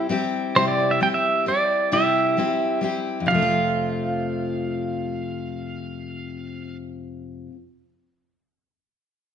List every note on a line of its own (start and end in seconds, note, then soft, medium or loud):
0.00 0.11 G4 medium
0.09 0.55 G3 medium
0.09 0.55 C4 medium
0.09 0.56 E4 medium
0.09 0.56 G4 medium
0.56 1.01 C3 medium
0.56 0.99 G3 medium
0.56 1.01 C4 medium
0.56 1.01 E4 medium
0.56 1.02 G4 medium
0.56 0.66 C5 medium
0.68 0.91 D5 medium
0.91 1.02 E5 medium
1.01 1.45 G3 medium
1.01 1.47 C4 medium
1.01 1.47 E4 medium
1.01 1.47 G4 medium
1.01 1.07 G5 medium
1.14 1.45 E5 loud
1.46 1.91 G3 medium
1.46 1.92 C4 medium
1.46 1.92 E4 medium
1.46 1.92 G4 medium
1.46 1.94 D5 medium
1.92 2.37 C3 medium
1.92 2.36 G3 medium
1.92 2.37 C4 medium
1.92 2.38 E4 medium
1.92 2.38 G4 medium
1.92 2.79 E5 medium
2.37 2.80 G3 medium
2.37 2.81 C4 medium
2.37 2.82 E4 medium
2.37 2.82 G4 medium
2.81 3.27 G3 medium
2.81 3.28 C4 medium
2.81 3.28 E4 medium
2.81 3.28 G4 medium
3.20 7.47 F2 medium
3.26 7.49 C3 medium
3.26 6.76 F5 medium
3.30 7.52 F3 medium
3.34 7.54 A3 medium
3.39 7.56 C4 medium
3.39 7.58 F4 medium